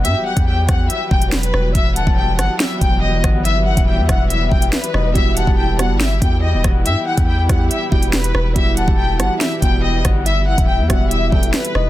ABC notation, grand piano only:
X:1
M:4/4
L:1/8
Q:1/4=141
K:Em
V:1 name="Grand piano"
z8 | z8 | z8 | [G,B,EFG]2 z [G,B,EFG]2 [G,B,EFG]3 |
z3 [G,B,EG]2 [G,B,EFG]2 z | [G,B,EFG]2 z [G,B,EFG]2 [G,B,EFG]3 | z3 [G,B,EFG]2 [G,B,EFA]2 z |]